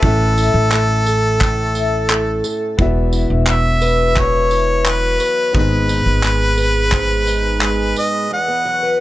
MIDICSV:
0, 0, Header, 1, 6, 480
1, 0, Start_track
1, 0, Key_signature, 4, "major"
1, 0, Tempo, 690449
1, 19, Time_signature, 4, 2, 24, 8
1, 6260, End_track
2, 0, Start_track
2, 0, Title_t, "Harmonica"
2, 0, Program_c, 0, 22
2, 5, Note_on_c, 0, 69, 99
2, 1692, Note_off_c, 0, 69, 0
2, 2437, Note_on_c, 0, 76, 104
2, 2920, Note_on_c, 0, 73, 106
2, 2931, Note_off_c, 0, 76, 0
2, 3395, Note_on_c, 0, 71, 96
2, 3406, Note_off_c, 0, 73, 0
2, 3866, Note_off_c, 0, 71, 0
2, 3884, Note_on_c, 0, 71, 94
2, 5522, Note_off_c, 0, 71, 0
2, 5548, Note_on_c, 0, 75, 93
2, 5766, Note_off_c, 0, 75, 0
2, 5792, Note_on_c, 0, 78, 107
2, 6236, Note_off_c, 0, 78, 0
2, 6260, End_track
3, 0, Start_track
3, 0, Title_t, "Upright piano"
3, 0, Program_c, 1, 0
3, 0, Control_c, 1, 64, 127
3, 13, Note_on_c, 1, 61, 62
3, 22, Note_on_c, 1, 64, 55
3, 27, Control_c, 1, 64, 0
3, 33, Note_on_c, 1, 69, 55
3, 43, Note_on_c, 1, 76, 67
3, 129, Control_c, 1, 64, 127
3, 1908, Note_off_c, 1, 61, 0
3, 1913, Note_off_c, 1, 64, 0
3, 1918, Note_off_c, 1, 69, 0
3, 1923, Note_off_c, 1, 76, 0
3, 1929, Note_on_c, 1, 59, 74
3, 1938, Note_on_c, 1, 64, 70
3, 1947, Note_on_c, 1, 66, 70
3, 1948, Control_c, 1, 64, 0
3, 1958, Note_on_c, 1, 76, 85
3, 2070, Control_c, 1, 64, 127
3, 3825, Note_off_c, 1, 59, 0
3, 3830, Note_off_c, 1, 64, 0
3, 3834, Note_off_c, 1, 66, 0
3, 3839, Note_off_c, 1, 76, 0
3, 3839, Note_on_c, 1, 59, 61
3, 3850, Note_on_c, 1, 63, 53
3, 3857, Note_on_c, 1, 68, 57
3, 3864, Note_on_c, 1, 75, 66
3, 3867, Control_c, 1, 64, 0
3, 3998, Control_c, 1, 64, 127
3, 5739, Note_off_c, 1, 59, 0
3, 5745, Note_off_c, 1, 63, 0
3, 5748, Note_off_c, 1, 68, 0
3, 5752, Note_off_c, 1, 75, 0
3, 5785, Control_c, 1, 64, 0
3, 6260, End_track
4, 0, Start_track
4, 0, Title_t, "Twelve-string acoustic guitar"
4, 0, Program_c, 2, 25
4, 0, Note_on_c, 2, 64, 60
4, 16, Note_on_c, 2, 45, 78
4, 257, Note_off_c, 2, 64, 0
4, 257, Note_on_c, 2, 64, 59
4, 497, Note_on_c, 2, 57, 75
4, 739, Note_on_c, 2, 69, 73
4, 972, Note_off_c, 2, 45, 0
4, 980, Note_on_c, 2, 45, 84
4, 1215, Note_off_c, 2, 64, 0
4, 1217, Note_on_c, 2, 64, 60
4, 1452, Note_off_c, 2, 57, 0
4, 1461, Note_on_c, 2, 57, 70
4, 1690, Note_off_c, 2, 69, 0
4, 1699, Note_on_c, 2, 69, 62
4, 1935, Note_on_c, 2, 40, 84
4, 1939, Note_off_c, 2, 45, 0
4, 1987, Note_off_c, 2, 69, 0
4, 1988, Note_off_c, 2, 57, 0
4, 2173, Note_off_c, 2, 64, 0
4, 2175, Note_on_c, 2, 64, 62
4, 2418, Note_on_c, 2, 54, 72
4, 2653, Note_on_c, 2, 71, 72
4, 2885, Note_off_c, 2, 40, 0
4, 2893, Note_on_c, 2, 40, 80
4, 3131, Note_off_c, 2, 64, 0
4, 3139, Note_on_c, 2, 64, 56
4, 3372, Note_off_c, 2, 54, 0
4, 3380, Note_on_c, 2, 54, 70
4, 3615, Note_off_c, 2, 71, 0
4, 3618, Note_on_c, 2, 71, 60
4, 3853, Note_off_c, 2, 40, 0
4, 3855, Note_on_c, 2, 44, 82
4, 3906, Note_off_c, 2, 64, 0
4, 3907, Note_off_c, 2, 54, 0
4, 4094, Note_on_c, 2, 63, 63
4, 4332, Note_on_c, 2, 56, 68
4, 4569, Note_off_c, 2, 71, 0
4, 4572, Note_on_c, 2, 71, 67
4, 4803, Note_off_c, 2, 44, 0
4, 4812, Note_on_c, 2, 44, 81
4, 5045, Note_off_c, 2, 63, 0
4, 5053, Note_on_c, 2, 63, 62
4, 5284, Note_off_c, 2, 56, 0
4, 5292, Note_on_c, 2, 56, 65
4, 5535, Note_off_c, 2, 71, 0
4, 5538, Note_on_c, 2, 71, 56
4, 5772, Note_off_c, 2, 44, 0
4, 5775, Note_on_c, 2, 40, 74
4, 5822, Note_off_c, 2, 56, 0
4, 5823, Note_off_c, 2, 63, 0
4, 5894, Note_on_c, 2, 59, 53
4, 6015, Note_on_c, 2, 54, 60
4, 6133, Note_off_c, 2, 71, 0
4, 6136, Note_on_c, 2, 71, 52
4, 6247, Note_off_c, 2, 40, 0
4, 6260, Note_off_c, 2, 54, 0
4, 6260, Note_off_c, 2, 59, 0
4, 6260, Note_off_c, 2, 71, 0
4, 6260, End_track
5, 0, Start_track
5, 0, Title_t, "Upright bass"
5, 0, Program_c, 3, 32
5, 16, Note_on_c, 3, 33, 97
5, 350, Note_off_c, 3, 33, 0
5, 374, Note_on_c, 3, 33, 89
5, 1669, Note_off_c, 3, 33, 0
5, 1937, Note_on_c, 3, 28, 90
5, 2270, Note_off_c, 3, 28, 0
5, 2294, Note_on_c, 3, 28, 94
5, 3588, Note_off_c, 3, 28, 0
5, 3853, Note_on_c, 3, 32, 99
5, 4188, Note_off_c, 3, 32, 0
5, 4213, Note_on_c, 3, 32, 84
5, 5506, Note_off_c, 3, 32, 0
5, 6260, End_track
6, 0, Start_track
6, 0, Title_t, "Drums"
6, 18, Note_on_c, 9, 36, 102
6, 88, Note_off_c, 9, 36, 0
6, 262, Note_on_c, 9, 54, 69
6, 331, Note_off_c, 9, 54, 0
6, 499, Note_on_c, 9, 39, 99
6, 569, Note_off_c, 9, 39, 0
6, 739, Note_on_c, 9, 54, 64
6, 809, Note_off_c, 9, 54, 0
6, 981, Note_on_c, 9, 36, 102
6, 981, Note_on_c, 9, 39, 84
6, 1050, Note_off_c, 9, 36, 0
6, 1051, Note_off_c, 9, 39, 0
6, 1217, Note_on_c, 9, 54, 52
6, 1287, Note_off_c, 9, 54, 0
6, 1460, Note_on_c, 9, 39, 102
6, 1529, Note_off_c, 9, 39, 0
6, 1696, Note_on_c, 9, 54, 66
6, 1766, Note_off_c, 9, 54, 0
6, 1938, Note_on_c, 9, 36, 109
6, 2007, Note_off_c, 9, 36, 0
6, 2173, Note_on_c, 9, 54, 73
6, 2243, Note_off_c, 9, 54, 0
6, 2410, Note_on_c, 9, 39, 105
6, 2480, Note_off_c, 9, 39, 0
6, 2653, Note_on_c, 9, 54, 65
6, 2722, Note_off_c, 9, 54, 0
6, 2896, Note_on_c, 9, 39, 86
6, 2897, Note_on_c, 9, 36, 97
6, 2965, Note_off_c, 9, 39, 0
6, 2967, Note_off_c, 9, 36, 0
6, 3135, Note_on_c, 9, 54, 51
6, 3204, Note_off_c, 9, 54, 0
6, 3377, Note_on_c, 9, 39, 103
6, 3446, Note_off_c, 9, 39, 0
6, 3615, Note_on_c, 9, 54, 66
6, 3684, Note_off_c, 9, 54, 0
6, 3856, Note_on_c, 9, 36, 110
6, 3925, Note_off_c, 9, 36, 0
6, 4096, Note_on_c, 9, 54, 70
6, 4166, Note_off_c, 9, 54, 0
6, 4335, Note_on_c, 9, 39, 100
6, 4404, Note_off_c, 9, 39, 0
6, 4572, Note_on_c, 9, 54, 65
6, 4641, Note_off_c, 9, 54, 0
6, 4812, Note_on_c, 9, 39, 88
6, 4814, Note_on_c, 9, 36, 98
6, 4881, Note_off_c, 9, 39, 0
6, 4884, Note_off_c, 9, 36, 0
6, 5054, Note_on_c, 9, 54, 53
6, 5123, Note_off_c, 9, 54, 0
6, 5293, Note_on_c, 9, 39, 99
6, 5363, Note_off_c, 9, 39, 0
6, 5536, Note_on_c, 9, 54, 67
6, 5605, Note_off_c, 9, 54, 0
6, 6260, End_track
0, 0, End_of_file